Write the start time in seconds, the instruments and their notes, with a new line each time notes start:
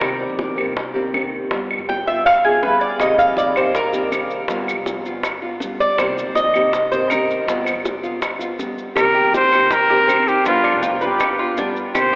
Already playing: cuban tres A#4
0.00 upright bass C2, nylon-string guitar C3 D#3 A#3 C4 G4, high bongo, claves
0.20 high bongo
0.29 upright bass A#1
0.39 high bongo
0.56 nylon-string guitar D#3 A#3 C4 G4, high bongo, claves
0.66 upright bass C2
0.76 muted nylon-string guitar stroke, high bongo
0.94 nylon-string guitar D#3 A#3 C4 G4, high bongo
1.14 nylon-string guitar D#3 A#3 C4 G4, high bongo, low bongo, claves
1.51 upright bass G1, nylon-string guitar G3 B3 F4, high bongo
1.71 high bongo, claves
1.79 upright bass F1
1.89 cuban tres G5, high bongo
2.07 nylon-string guitar B3 F4, cuban tres E5, high bongo
2.16 upright bass G1
2.26 cuban tres F5, muted nylon-string guitar stroke, high bongo, claves
2.44 nylon-string guitar B3 F4, cuban tres G#4, high bongo
2.63 nylon-string guitar G3 B3 F4, cuban tres B4, high bongo, low bongo
2.81 cuban tres D5
3.00 upright bass C2, nylon-string guitar C3 D#3 A#3 C4 G4, cuban tres D#5, high bongo, claves, maracas
3.18 cuban tres F5, high bongo, maracas
3.28 upright bass A#1
3.37 cuban tres D5, high bongo, maracas
3.55 nylon-string guitar D#3 A#3 C4 G4, cuban tres C5, high bongo, claves, maracas
3.65 upright bass C2
3.75 cuban tres A#4, muted nylon-string guitar stroke, high bongo, maracas
3.93 nylon-string guitar D#3 A#3 C4 G4, high bongo, maracas
4.11 nylon-string guitar D#3 A#3 C4 G4, high bongo, low bongo, claves, maracas
4.30 maracas
4.48 upright bass G1, nylon-string guitar G3 B3 F4, high bongo, maracas
4.67 high bongo, claves, maracas
4.77 upright bass F1
4.86 high bongo, maracas
5.05 nylon-string guitar B3 F4, high bongo, maracas
5.14 upright bass G1
5.23 muted nylon-string guitar stroke, high bongo, claves, maracas
5.42 nylon-string guitar B3 F4, high bongo
5.60 nylon-string guitar G3 B3 F4, high bongo, low bongo, maracas
5.80 cuban tres D5, maracas
5.98 upright bass C2, nylon-string guitar C3 D#3 A#3 C4 G4, cuban tres C5, high bongo, claves, maracas
6.17 high bongo, maracas
6.27 upright bass A#1
6.35 cuban tres D#5, high bongo, maracas
6.54 nylon-string guitar D#3 A#3 C4 G4, high bongo, claves, maracas
6.64 upright bass C2
6.73 muted nylon-string guitar stroke, high bongo, maracas
6.92 nylon-string guitar D#3 A#3 C4 G4, cuban tres C5, high bongo, maracas
7.10 nylon-string guitar D#3 A#3 C4 G4, cuban tres A#4, high bongo, low bongo, claves, maracas
7.30 maracas
7.47 upright bass G1, nylon-string guitar G3 B3 F4, high bongo, maracas
7.66 high bongo, claves, maracas
7.75 upright bass F1
7.85 high bongo, maracas
8.03 nylon-string guitar B3 F4, high bongo, maracas
8.13 upright bass G1
8.22 muted nylon-string guitar stroke, high bongo, claves, maracas
8.39 nylon-string guitar B3 F4, high bongo, maracas
8.58 nylon-string guitar G3 B3 F4, high bongo, low bongo, maracas
8.78 maracas
8.95 upright bass C2, nylon-string guitar C3 D#3 A#3 C4 G4, trumpet A#4, high bongo, claves, maracas
9.14 cuban tres G4, high bongo
9.24 upright bass A#1
9.34 nylon-string guitar G4, trumpet C5, high bongo, maracas
9.52 nylon-string guitar D#3 A#3 C4 G4, cuban tres C5, high bongo, claves, maracas
9.61 upright bass C2
9.71 nylon-string guitar G4, trumpet A#4, muted nylon-string guitar stroke, high bongo, maracas
9.90 nylon-string guitar D#3 A#3 C4 G4, cuban tres G4, high bongo
10.08 nylon-string guitar D#3 C4 G4, cuban tres C4, high bongo, low bongo, claves, maracas
10.28 nylon-string guitar D#4, trumpet G4, maracas
10.45 upright bass G1, nylon-string guitar G3 B3 D4 F4, cuban tres B3, trumpet F4, high bongo, maracas
10.64 cuban tres D4, high bongo, claves
10.73 upright bass F1
10.82 cuban tres F4, high bongo, maracas
11.01 nylon-string guitar B3 D4 F4, trumpet G4, cuban tres B4, high bongo, maracas
11.11 upright bass G1
11.20 muted nylon-string guitar stroke, high bongo, claves, maracas
11.39 nylon-string guitar B3 F4, cuban tres F4, high bongo
11.57 nylon-string guitar G3 B3 F4, cuban tres D4, high bongo, low bongo, maracas
11.76 maracas
11.95 upright bass C2, nylon-string guitar C3 D#3 A#3 C4 G4, trumpet C5, high bongo, claves, maracas